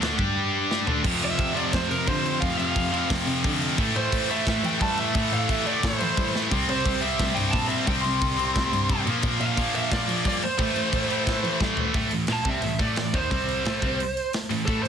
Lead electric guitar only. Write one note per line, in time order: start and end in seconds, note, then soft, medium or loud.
1.25 1.58 E5 medium
1.56 1.73 D5 medium
1.73 1.91 C5 medium
1.89 2.07 A#4 medium
2.08 2.43 C5 medium
2.40 2.57 F5 loud
2.59 3.06 F5 medium
3.96 4.31 C5 medium
4.31 4.65 E5 loud
4.65 4.81 G5 medium
4.81 4.98 A5 loud
4.99 5.33 E5 loud
5.34 5.49 F5 medium
5.49 5.66 E5 medium
5.66 5.83 D5 loud
5.83 6.34 C5 medium
6.70 7.04 C5 medium
7.01 7.36 E5 medium
7.35 7.51 G5 medium
7.51 7.69 A5 loud
7.68 7.87 E5 medium
7.85 8.03 G5 loud
8.01 9.00 C6 loud
9.41 9.75 F5 loud
9.75 9.92 E5 loud
9.92 10.26 D5 loud
10.28 10.44 D5 medium
10.44 11.57 C5 medium
12.33 12.48 A5 medium
12.49 12.81 E5 medium
12.81 13.16 D5 medium
13.15 13.30 C5 medium
13.31 14.29 C5 medium
14.66 14.82 A4 medium
14.83 14.88 C5 medium